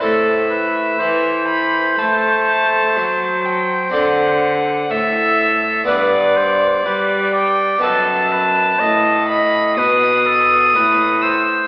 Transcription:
<<
  \new Staff \with { instrumentName = "Violin" } { \time 4/4 \key a \dorian \tempo 4 = 62 e''4. b''8 a''4. g''8 | fis''4 e''4 d''4. g''8 | a''4. b''8 dis'''4. e'''8 | }
  \new Staff \with { instrumentName = "Oboe" } { \time 4/4 \key a \dorian a'8 b'8 c''2.~ | c''8 r8 a'4 b'8 c''8 b'8 d''8 | a'8 b'8 dis''8 dis''8 b'8 a'8 b'8 c''8 | }
  \new Staff \with { instrumentName = "Harpsichord" } { \time 4/4 \key a \dorian <c' e' a'>1 | <c' d' a'>2 <b d' b'>2 | <b dis' b'>1 | }
  \new Staff \with { instrumentName = "Harpsichord" } { \clef bass \time 4/4 \key a \dorian a,4 e4 a4 fis4 | d4 a,4 g,4 g4 | fis,4 a,4 b,4 a,4 | }
  \new Staff \with { instrumentName = "Cello" } { \clef bass \time 4/4 \key a \dorian a,4 e4 a4 fis4 | d4 a,4 g,4 g4 | fis,4 a,4 b,4 a,4 | }
>>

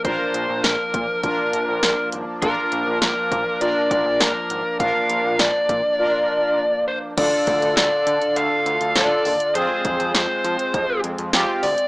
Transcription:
<<
  \new Staff \with { instrumentName = "Lead electric guitar" } { \time 4/4 \key bes \mixolydian \tempo 4 = 101 c''4 bes'2~ bes'8 r8 | bes'4 bes'4 d''8 d''8 bes'4 | f''4 d''2~ d''8 c''8 | d''4 d''4 f''4 d''4 |
c''4 c''4. r4 d''8 | }
  \new Staff \with { instrumentName = "Analog polysynth" } { \time 4/4 \key bes \mixolydian <d' f' bes'>4 r4 <d' f' bes'>4 r4 | <d' f' bes'>4 r4 <d' f' bes'>4 r4 | <d' f' bes'>4 r4 <d' f' bes'>4 r4 | <d' f' a'>4 r2 <d' f' a'>8 r8 |
<c' f' aes'>4 r2 <c' f' g'>8 r8 | }
  \new Staff \with { instrumentName = "Analog synth pad" } { \time 4/4 \key bes \mixolydian <f bes d'>1~ | <f bes d'>1~ | <f bes d'>1 | <d d' f' a'>1 |
<aes c'>1 | }
  \new Staff \with { instrumentName = "Analog synth bass" } { \clef bass \time 4/4 \key bes \mixolydian bes,,16 r16 bes,,16 bes,,16 bes,,16 r16 bes,16 r16 bes,,16 r16 bes,,16 bes,,16 bes,,16 r16 aes,,16 r16 | bes,,16 r16 bes,,16 bes,,16 bes,,16 r16 bes,16 r16 bes,,16 r16 bes,,16 bes,,16 bes,,16 r16 aes,,16 r16 | bes,,16 r16 bes,,16 bes,,16 bes,,16 r16 bes,16 r2 r16 | d,16 r16 d,16 d,16 d,16 r16 d16 r16 d,16 r16 d,16 d,16 d,16 r16 ees,16 r16 |
f,16 r16 f,16 f,16 f,16 r16 f16 r16 f,16 r16 f,16 f,16 f,16 r16 d,16 r16 | }
  \new DrumStaff \with { instrumentName = "Drums" } \drummode { \time 4/4 <hh bd>8 hh8 <hh sn>8 <hh bd>8 <hh bd>8 hh8 <hh sn>8 hh8 | <hh bd>8 hh8 <hh sn>8 <hh bd>8 hh8 <hh bd>8 <hh sn>8 hh8 | <hh bd>8 hh8 <hh sn>8 <hh bd>8 r4 r4 | <cymc hh bd>8 <hh bd>16 hh16 <hh sn>8 hh16 hh16 hh8 hh16 hh16 <hh sn>8 hho16 hh16 |
hh8 <hh bd>16 hh16 <hh sn>8 hh16 hh16 <hh bd>8 hh16 hh16 <hh sn>8 hho16 hh16 | }
>>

